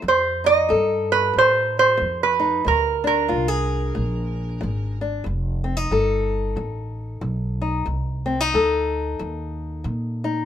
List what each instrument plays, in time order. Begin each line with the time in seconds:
0.02 steel-string acoustic guitar F2, upright bass F2
0.08 resonator guitar played with a steel bar C5
0.44 steel-string acoustic guitar D#4, resonator guitar played with a steel bar D#5
0.69 steel-string acoustic guitar F2 A4, upright bass G2
1.12 resonator guitar played with a steel bar B4
1.34 steel-string acoustic guitar F2, upright bass A2
1.38 resonator guitar played with a steel bar C5
1.79 resonator guitar played with a steel bar C5
1.97 steel-string acoustic guitar F2, upright bass F2
2.23 resonator guitar played with a steel bar B4
2.40 steel-string acoustic guitar D#4
2.65 upright bass D2, steel-string acoustic guitar A#2, resonator guitar played with a steel bar A#4
3.04 steel-string acoustic guitar D4, resonator guitar played with a steel bar A#4
3.28 upright bass C2, steel-string acoustic guitar A#2 F4
3.48 steel-string acoustic guitar G#4
3.95 upright bass A#1, steel-string acoustic guitar A#2
4.61 upright bass G#1, steel-string acoustic guitar A#2
5.01 steel-string acoustic guitar D4
5.24 upright bass F1, steel-string acoustic guitar F2
5.64 steel-string acoustic guitar C4
5.77 steel-string acoustic guitar D#4
5.91 upright bass G1, steel-string acoustic guitar F2 A4
6.56 upright bass A1, steel-string acoustic guitar F2
7.21 upright bass B1, steel-string acoustic guitar F2
7.62 steel-string acoustic guitar D#4
7.86 upright bass C2, steel-string acoustic guitar F2
8.26 steel-string acoustic guitar C4
8.40 steel-string acoustic guitar D#4
8.54 upright bass D2, steel-string acoustic guitar F2 A4
9.19 upright bass D#2, steel-string acoustic guitar F2
9.84 steel-string acoustic guitar F2, upright bass A#2
10.24 steel-string acoustic guitar D#4